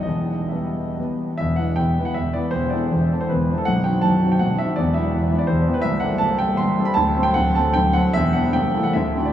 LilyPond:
<<
  \new Staff \with { instrumentName = "Grand piano" } { \time 3/4 \key e \minor \tempo 4 = 156 dis''4 e''4. r8 | e''8 fis''8 g''8. fis''16 e''8 d''8 | c''8 d''4~ d''16 c''16 b'8. a'16 | fis''8 g''8 a''8. g''16 fis''8 e''8 |
d''8 e''4~ e''16 d''16 c''8. b'16 | \key a \dorian e''8 fis''8 a''8 g''8 c'''8. b''16 | a''8. g''16 fis''8 a''8 g''8 fis''8 | e''8 fis''8 g''8. fis''16 e''8. d''16 | }
  \new Staff \with { instrumentName = "Grand piano" } { \clef bass \time 3/4 \key e \minor <e,, e,>4 <g b b'>4 <g b b'>4 | <e,, e,>8 <e b b'>8 <e,, e,>8 <e b b'>8 <e,, e,>8 <e b b'>8 | <e,, e,>8 <e c' a'>8 <e,, e,>8 <e c' a'>8 <e,, e,>8 <e c' a'>8 | <b,,, b,,>8 <dis c' fis'>8 <b,,, b,,>8 <dis c' fis'>8 <b,,, b,,>8 <dis c' fis'>8 |
<e,, e,>8 <e b g'>8 <e,, e,>8 <e b g'>8 <e,, e,>8 <e b g'>8 | \key a \dorian <c,, c,>8 <g c' a'>8 <c,, c,>8 <g c' a'>8 <c,, c,>8 <g c' a'>8 | <d,, d,>8 <fis c' a'>8 <d,, d,>8 <fis c' a'>8 <d,, d,>8 <fis c' a'>8 | <e,, e,>8 <e b g'>8 <c,, c,>8 <e a a'>8 <d,, d,>8 <d a fis'>8 | }
>>